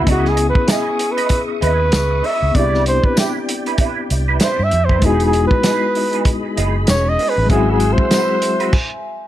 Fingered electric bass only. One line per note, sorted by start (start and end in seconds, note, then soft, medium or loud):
0.07 0.50 C#2 medium
1.62 1.90 D#2 medium
1.93 2.20 C#2 medium
2.43 2.54 C#2 loud
2.55 2.98 C2 loud
4.11 4.38 C2 medium
4.59 4.70 G2 medium
4.73 5.00 F2 medium
5.03 5.46 E1 medium
6.58 6.85 F#1 medium
6.89 7.16 E1 loud
7.38 7.49 A1 medium
7.50 7.93 G#1 loud